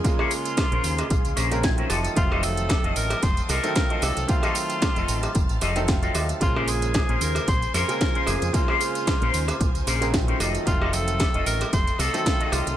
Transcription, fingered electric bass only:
0.72 0.79 A#1 medium
0.84 1.01 D#2 medium
1.11 1.19 A#1 medium
1.25 1.32 C#2 medium
1.37 1.83 A#1 medium
1.90 2.07 F1 medium
2.17 2.75 F1 loud
2.84 2.92 F1 medium
2.96 3.13 A1 medium
3.23 3.40 F1 medium
3.49 3.58 C2 loud
4.03 4.11 C2 loud
4.17 4.24 C2 medium
4.97 5.04 F1 medium
5.09 5.26 A1 medium
5.35 5.44 F1 medium
5.50 5.57 A1 medium
5.62 6.07 F1 medium
6.15 6.32 D#2 medium
6.42 7.00 A#1 loud
7.09 7.16 A#1 medium
7.21 7.38 D#2 medium
7.48 7.65 A#1 medium
7.74 7.83 F2 loud
8.27 8.36 F1 loud
8.42 8.49 F2 medium
9.22 9.29 A#1 medium
9.34 9.51 D#2 medium
9.61 9.69 A#1 medium
9.75 9.82 C#2 medium
9.87 10.32 A#1 medium
10.40 10.57 F1 medium
10.67 11.25 F1 loud
11.34 11.41 F1 medium
11.46 11.63 A1 medium
11.73 11.90 F1 medium
11.99 12.08 C2 loud
12.52 12.61 C2 loud
12.67 12.74 C2 medium

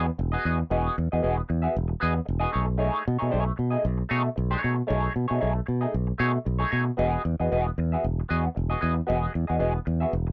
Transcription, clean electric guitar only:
0.06 muted clean electric guitar stroke soft
0.18 muted clean electric guitar stroke soft
0.32 0.44 B3 medium
0.32 0.44 F#4 medium
0.32 0.45 G#4 medium
0.32 0.45 D#5 medium
0.45 0.59 B3 medium
0.45 0.59 F#4 medium
0.45 0.59 G#4 medium
0.45 0.58 D#5 medium
0.59 muted clean electric guitar stroke soft
0.70 0.95 B3 medium
0.70 0.95 F#4 medium
0.70 0.95 G#4 medium
0.70 0.95 D#5 medium
0.97 muted clean electric guitar stroke soft
1.12 1.21 B3 medium
1.12 1.22 F#4 medium
1.12 1.22 G#4 medium
1.12 1.23 D#5 medium
1.22 1.41 B3 medium
1.22 1.37 F#4 medium
1.22 1.37 G#4 medium
1.22 1.36 D#5 medium
1.38 muted clean electric guitar stroke soft
1.49 muted clean electric guitar stroke medium
1.62 1.76 B3 soft
1.62 1.75 F#4 soft
1.62 1.75 G#4 medium
1.62 1.75 E5 medium
1.88 muted clean electric guitar stroke soft
2.00 2.19 B3 medium
2.00 2.15 F#4 medium
2.00 2.14 G#4 medium
2.00 2.14 D#5 medium
2.15 muted clean electric guitar stroke soft
2.25 muted clean electric guitar stroke soft
2.40 2.52 B3 medium
2.40 2.52 F#4 medium
2.40 2.52 G#4 medium
2.40 2.53 D#5 medium
2.52 2.68 A3 medium
2.52 2.67 D#4 medium
2.52 2.66 G#4 medium
2.52 2.65 C#5 medium
2.67 muted clean electric guitar stroke soft
2.78 3.03 A3 medium
2.78 3.03 D#4 medium
2.78 3.04 G#4 medium
2.78 3.04 C#5 medium
3.04 muted clean electric guitar stroke soft
3.19 3.29 A3 soft
3.19 3.30 D#4 medium
3.19 3.30 G#4 medium
3.19 3.31 C#5 medium
3.30 3.52 A3 medium
3.30 3.45 D#4 medium
3.30 3.45 G#4 medium
3.30 3.44 C#5 medium
3.45 muted clean electric guitar stroke soft
3.56 muted clean electric guitar stroke soft
3.71 3.85 A3 soft
3.71 3.84 D#4 soft
3.71 3.84 G#4 medium
3.71 3.84 D#5 medium
3.98 muted clean electric guitar stroke soft
4.09 4.28 A3 medium
4.09 4.24 D#4 medium
4.09 4.23 G#4 medium
4.09 4.22 C#5 loud
4.24 muted clean electric guitar stroke soft
4.36 muted clean electric guitar stroke soft
4.51 4.60 A3 medium
4.51 4.61 D#4 medium
4.51 4.62 G#4 medium
4.51 4.62 C#5 medium
4.61 4.77 A3 medium
4.61 4.76 D#4 medium
4.61 4.75 G#4 medium
4.61 4.75 C#5 medium
4.76 muted clean electric guitar stroke soft
4.87 5.13 A3 medium
4.87 5.13 D#4 medium
4.87 5.13 G#4 medium
4.87 5.13 C#5 medium
5.14 muted clean electric guitar stroke soft
5.28 5.39 A3 soft
5.28 5.39 D#4 medium
5.28 5.40 G#4 medium
5.28 5.40 C#5 medium
5.40 5.59 A3 medium
5.40 5.54 D#4 medium
5.40 5.53 G#4 medium
5.40 5.53 C#5 medium
5.54 muted clean electric guitar stroke soft
5.66 muted clean electric guitar stroke soft
5.81 5.94 A3 soft
5.81 5.94 D#4 soft
5.81 5.94 G#4 soft
5.81 5.94 D#5 medium
6.07 muted clean electric guitar stroke soft
6.18 6.37 A3 medium
6.18 6.33 D#4 medium
6.18 6.33 G#4 medium
6.18 6.32 C#5 loud
6.33 muted clean electric guitar stroke soft
6.45 muted clean electric guitar stroke soft
6.59 6.69 A3 medium
6.59 6.69 D#4 medium
6.59 6.70 G#4 medium
6.59 6.71 C#5 medium
6.70 6.86 A3 medium
6.70 6.86 D#4 medium
6.70 6.85 G#4 medium
6.70 6.84 C#5 medium
6.86 muted clean electric guitar stroke soft
6.97 7.22 B3 medium
6.97 7.23 F#4 medium
6.97 7.23 G#4 medium
6.97 7.23 D#5 medium
7.23 muted clean electric guitar stroke soft
7.40 7.50 B3 soft
7.40 7.50 F#4 medium
7.40 7.51 G#4 medium
7.40 7.52 D#5 medium
7.51 7.69 B3 medium
7.51 7.67 F#4 medium
7.51 7.66 G#4 medium
7.51 7.65 D#5 medium
7.67 muted clean electric guitar stroke soft
7.78 muted clean electric guitar stroke soft
7.92 8.05 B3 soft
7.92 8.05 F#4 soft
7.92 8.05 G#4 medium
7.92 8.04 E5 soft
8.20 muted clean electric guitar stroke soft
8.29 8.48 B3 medium
8.29 8.46 F#4 medium
8.29 8.45 G#4 medium
8.29 8.44 D#5 medium
8.45 muted clean electric guitar stroke soft
8.55 muted clean electric guitar stroke soft
8.70 8.79 B3 medium
8.70 8.80 F#4 medium
8.70 8.80 G#4 medium
8.70 8.81 D#5 medium
8.80 8.96 B3 medium
8.80 8.96 F#4 medium
8.80 8.95 G#4 medium
8.80 8.94 D#5 medium
8.96 muted clean electric guitar stroke soft
9.07 9.31 B3 medium
9.07 9.32 F#4 medium
9.07 9.33 G#4 medium
9.07 9.33 D#5 medium
9.32 muted clean electric guitar stroke soft
9.47 9.58 B3 soft
9.47 9.58 F#4 soft
9.47 9.59 G#4 medium
9.47 9.60 D#5 medium
9.59 9.78 B3 medium
9.59 9.74 F#4 medium
9.59 9.74 G#4 medium
9.59 9.73 D#5 medium
9.74 muted clean electric guitar stroke soft
9.85 muted clean electric guitar stroke soft
10.00 10.14 B3 soft
10.00 10.14 F#4 medium
10.00 10.13 G#4 soft
10.00 10.13 E5 medium
10.27 muted clean electric guitar stroke soft

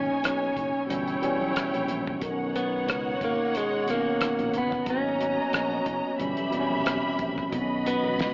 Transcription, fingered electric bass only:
0.24 0.49 B1 medium
0.57 0.70 F#1 medium
0.89 1.15 G1 medium
1.22 muted fingered electric bass stroke soft
1.41 1.53 B1 medium
1.73 1.85 A#1 medium
1.89 2.14 A#1 medium
2.22 2.88 B1 loud
2.88 3.13 C#2 medium
3.21 3.35 G#1 medium
4.39 4.54 A#1 medium
4.54 4.79 G1 medium
4.87 5.38 G#1 loud
5.53 5.79 A#1 medium
5.86 6.00 F#1 medium
6.19 6.33 G1 medium
6.37 6.49 B1 medium
6.70 6.82 A#1 medium
6.86 7.00 B1 medium
7.19 7.45 A#1 medium
7.53 8.18 B1 medium
8.18 8.34 C#2 medium

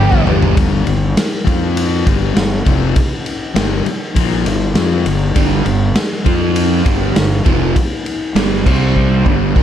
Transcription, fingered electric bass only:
0.00 0.23 G1 medium
0.27 0.53 G1 loud
0.57 0.85 G1 medium
0.87 1.15 G1 medium
1.47 2.03 F2 medium
2.07 2.34 G1 medium
2.36 2.64 G1 medium
2.66 2.94 F1 medium
3.55 3.84 G1 medium
3.86 muted fingered electric bass stroke soft
4.16 4.44 A#1 medium
4.46 4.74 G1 medium
4.75 5.04 F2 medium
5.05 5.34 G1 medium
5.36 5.64 G1 medium
5.66 5.94 G1 medium
6.26 6.82 F2 loud
6.86 7.14 G1 loud
7.15 7.44 G1 medium
7.46 7.74 F1 medium
8.35 8.64 G1 medium
8.66 9.22 C2 medium
9.26 9.54 G1 loud
9.56 9.63 A#1 medium

